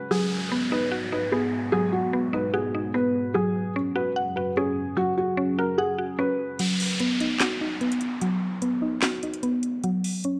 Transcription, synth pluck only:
Already playing: C#4 F#4 F#5
0.11 F#3
0.52 B3
0.72 D#4
0.92 F#4
1.12 D#4
1.32 B3
1.73 F#3
2.13 B3
2.33 D#4
2.54 F#4
2.75 D#4
2.94 B3
3.35 F#3
3.76 C#4
3.96 F#4
4.16 F#5
4.37 F#4
4.57 C#4
4.97 F#3
5.37 C#4
5.59 F#4
5.78 F#5
5.98 F#4
6.19 C#4
6.60 F#3
7.00 B3
7.21 D#4
7.40 F#4
7.61 D#4
7.81 B3
8.22 F#3
8.62 B3
8.82 D#4
9.02 F#4
9.23 D#4
9.43 B3
9.84 F#3
10.25 C#4

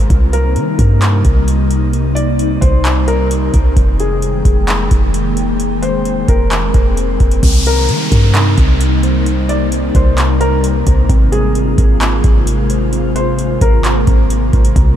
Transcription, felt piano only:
0.33 A#4
2.15 D5
2.61 C5
3.08 A#4
4.00 G#4
5.82 C5
6.29 A#4
7.67 A#4
9.49 D5
9.96 C5
10.40 A#4
11.32 G#4
13.16 C5
13.62 A#4

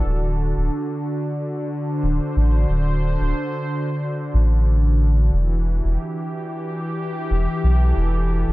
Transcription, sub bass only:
0.05 D1
0.57 D1
2.03 D1
2.36 A1
2.69 D1
3.20 D1
4.34 A1
5.33 E1
5.84 E1
7.31 E1
7.64 B1
7.97 E1
8.48 E1

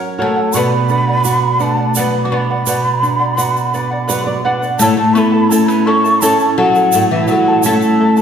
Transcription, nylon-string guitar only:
Already playing: F#3 C#4
0.19 F#4
0.54 B2
0.89 D4
1.25 F#4
1.60 D4
1.97 F#3
2.32 D4
2.67 B2
3.03 D4
3.38 F#4
3.74 D4
4.09 F#3 B4
4.27 D5
4.45 D4 F#5
4.80 A2
5.51 C#4 E4 A4
6.22 C#4 E4 A4
6.94 A2
7.64 C#4 E4 A4

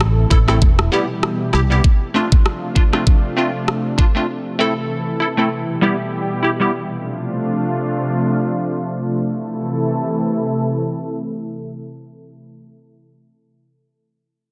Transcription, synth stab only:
0.30 E4 A4
0.48 A3 C4 E4 A4
0.92 G3 B3 E4 G4
1.53 E4 G4
1.70 G3 B3 E4 G4
2.14 A3 C4 D4 F4
2.75 D4 F4
2.93 A3 C4 D4 F4
3.37 A3 C4 D4 F4
3.98 D4 F4
4.15 A3 C4 D4 F4
4.59 A3 C4 E4 A4
5.20 E4 A4
5.37 A3 C4 E4 A4
5.81 G3 B3 E4 G4
6.43 E4 G4
6.60 G3 B3 E4 G4

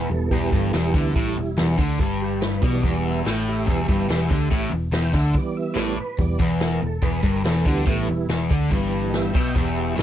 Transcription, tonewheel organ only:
0.09 E3 G3 B3 A4
0.30 E3 G3 B3 G4
0.53 A4
0.74 G4
0.93 E3 G3 B3 E4
2.22 G4
2.41 B4
2.61 E3 G3 B3 D5
3.05 E5
3.27 G5
3.48 G4 E5
3.70 E3 G3 B3
4.94 G5
5.15 E5
5.36 E3 G3 B3 D5
5.57 E5
5.79 D5
6.00 B4
6.19 E3 G3 B3 D5
6.42 B4
6.65 A#4
6.86 A4
7.04 B4
7.26 A#4
7.45 A4
7.67 E3 G3 B3 G4
7.89 A4
8.10 E4
8.72 E3 G3 B3
9.09 D#5
9.14 G4 E5
9.33 E5 G5
9.55 G4 E5

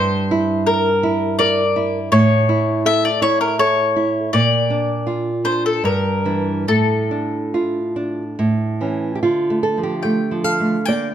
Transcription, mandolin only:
Already playing: C5
0.66 A#4
1.39 D5
2.12 C#5
2.86 E5
3.05 D5
3.22 C#5
3.41 A#4
3.59 C#5
4.33 D5
5.45 C5
5.66 A4
5.85 A#4
6.68 A4
10.03 G5
10.44 F5
10.86 G5

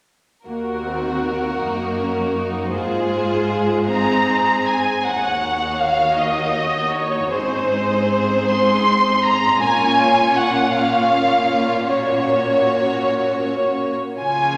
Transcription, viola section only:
0.47 A#3 F#4
0.86 C4
1.24 A#3
1.62 D#4
1.98 C#4
2.36 D#4
2.73 G#3 F4
3.87 C4 D#4
5.05 A#3 D#4
7.32 C4
9.60 A#3 C#4
10.72 A#3 C#4
11.87 A#3 C#4
14.19 F3 C#4

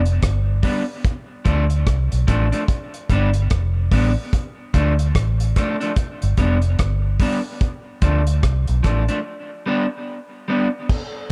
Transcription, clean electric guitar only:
0.63 G3 B3 D4
1.45 F3 A3 D4
2.27 F3 A3 D4
2.52 F3 A3 D4
3.10 G3 B3 D4
3.92 G3 B3 D4
4.74 F3 A3 D4
5.56 F3 A3 D4
5.80 F3 A3 D4
6.38 G3 B3 D4
7.20 G3 B3 D4
8.02 F3 A3 D4
8.83 F3 A3 D4
9.09 F3 A3 D4
9.66 G3 B3 D4
10.48 G3 B3 D4

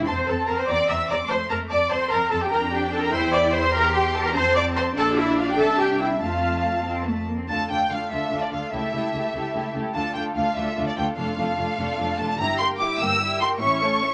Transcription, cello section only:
0.08 C4
1.29 A3
1.90 C4
2.51 D4
3.12 E4
3.73 G4
4.35 C4
4.96 D4
6.22 A3
6.86 C4
7.07 A3
7.28 A#3
7.39 C4
7.49 D3
7.70 D3
7.91 D3
8.11 D3
8.31 D3
8.52 D3
8.72 C#3
8.93 C#3
9.13 C#3
9.34 C#3
9.54 C#3
9.74 C#3
9.95 D3
10.15 D3
10.36 D3
10.56 D3
10.76 D3
10.96 D3
11.17 F2
11.37 F2
11.58 F2
11.78 F2
11.99 F2
12.19 F2
12.40 G2
13.01 G2
13.61 A2

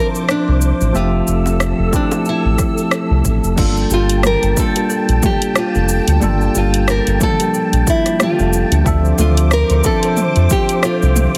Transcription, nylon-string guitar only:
0.31 D4
0.96 F4
1.96 D4
2.29 E4
3.94 F4
4.26 A#4
4.59 A4
5.26 G4
5.58 F4
6.57 F4
6.90 A#4
7.23 A4
7.90 E4
8.23 F4
9.20 F4
9.53 A#4
9.86 A4
10.52 G4
10.85 F4

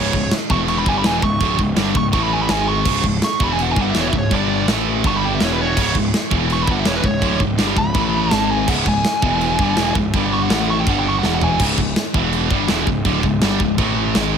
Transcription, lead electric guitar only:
Already playing: C#5
0.51 C#6
0.69 C#6
0.78 B5
0.88 G#5
0.97 B5
1.06 G#5
1.24 C#6
1.97 C#6
2.14 C#6
2.23 B5
2.33 G#5
2.42 B5
2.51 G#5
2.68 C#6
3.25 C#6
3.44 B5
3.53 G#5
3.62 F#5
3.71 G#5
3.81 F#5
3.90 E5
4.00 C#5
4.09 E5
4.18 C#5
4.35 D5
5.07 C#6
5.17 B5
5.25 G5
5.35 E5
5.45 C#5
5.53 B4
5.61 C#5
6.53 C#6
6.63 B5
6.71 F#5
6.79 E5
6.88 C#5
6.95 B4
7.06 C#5
7.78 B5
8.32 A5
8.51 G#5
8.69 F#5
8.88 G#5
10.33 C#6
10.42 F#5
10.53 F#5
10.62 F#5
10.70 C#6
10.80 G5
10.89 F#5
10.99 G5
11.09 C#6
11.19 F#5
11.25 F#5
11.35 F#5
11.44 G#5

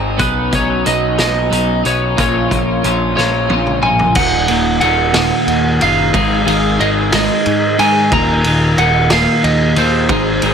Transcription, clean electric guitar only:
Already playing: D#3 G#3 C4 D#4
0.17 B2 F#3 B3 C#4 D#4
0.51 B3 C#4 D#4
0.84 F#3 B3 C#4 D#4
1.18 B3 C#4 D#4
1.50 F#3 B3 C#4 D#4
1.84 B3 C#4 D#4
2.16 A#2 F3 A#3 C#4 F4
2.48 A#3 C#4 F4
2.82 F3 A#3 C#4 F4
3.15 A#3 C#4 F4
3.48 F3 A#3 C#4 F4
3.82 A#3 C#4 F4
4.15 D#2 A#2 D#3
4.48 D#2 A#2 D#3
4.81 D#2 A#2 D#3
5.13 D#2 A#2 D#3
5.81 D#2 A#2 D#3
6.13 G#2 D#3 G#3
6.45 G#2 D#3 G#3
6.78 G#2 D#3 G#3
7.12 G#2 D#3 G#3
7.78 G#2 D#3 G#3
8.11 D#2 A#2 D#3
8.45 D#2 A#2 D#3
8.78 D#2 A#2 D#3
9.11 D#2 A#2 D#3
9.77 D#2 A#2 D#3
10.09 G#2 D#3 G#3
10.42 G#2 D#3 G#3

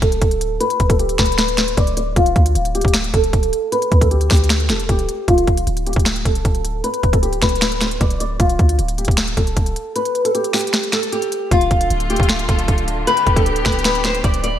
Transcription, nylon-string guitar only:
0.02 A4
0.60 B4
0.90 A4
0.99 G4
1.19 B4
1.38 B4
1.58 C5
1.77 D5
1.97 D5
2.17 F4
2.75 G4
3.14 A4
3.72 B4
4.01 A4
4.11 G4
4.31 G4
4.70 A4
4.89 G4
5.28 F4
5.87 G4
6.25 A4
6.84 B4
7.13 A4
7.23 G4
7.42 B4
7.62 B4
7.82 C5
8.01 D5
8.20 D5
8.40 F4
8.98 G4
9.37 A4
9.96 B4
10.25 A4
10.35 G4
10.54 G4
10.93 A4
11.12 G4
11.51 F4
12.10 G4
12.49 A4
13.07 B4
13.36 A4
13.46 G4
13.66 B4
13.85 B4
14.05 C5
14.24 D5
14.44 D5

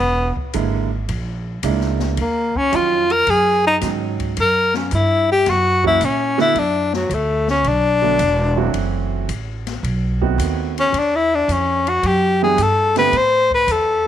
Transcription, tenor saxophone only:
Already playing: B3
2.21 A#3
2.57 C#4
2.75 F4
3.12 A#4
3.30 G#4
3.67 D#4
4.40 A#4
4.76 C#4
4.95 E4
5.32 G4
5.50 F#4
5.87 E4
6.05 C#4
6.41 E4
6.59 D4
6.95 F#3
7.14 A3
7.50 C#4
7.68 D4
10.80 C#4
10.98 D4
11.16 E4
11.35 D4
11.52 C#4
11.89 F#4
12.07 G4
12.44 G#4
12.62 A4
12.98 B4
13.17 C5
13.54 B4
13.72 A4

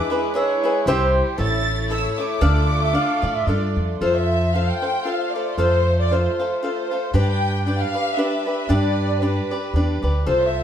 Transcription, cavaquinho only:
Already playing: D4 G#4 B4
0.10 G#4 B4 E5
0.34 D4 G#4 B4 E5
0.64 G#4 B4 E5
0.87 E4 G4 C5 E5
1.38 E4 A4 C#5 E5
1.90 E4 A4 C#5 E5
2.18 A4 C#5 E5
2.41 D4 A4 D5 F5
2.93 D4 A4 D5 F5
3.22 A4 D5 F5
3.47 D4 A4 D5 F5
4.01 F4 A4 C5
4.54 F4 A4 C5 F5
4.82 A4 C5 F5
5.05 F4 A4 C5 F5
5.35 A4 C5 F5
5.58 F4 A4 C5 F5
6.11 F4 A4 C5 F5
6.40 A4 C5 F5
6.63 F4 A4 C5 F5
6.91 A4 C5 F5
7.14 D4 G4 B4 D5
7.66 D4 G4 B4 D5
7.94 G4 B4 D5
8.17 D4 G4 B4 D5
8.46 G4 B4 D5
8.69 D4 G4 B4 D5
9.22 D4 G4 B4 D5
9.51 G4 B4 D5
9.76 D4 G4 B4 D5
10.02 G4 B4 D5
10.26 F4 A4 C5

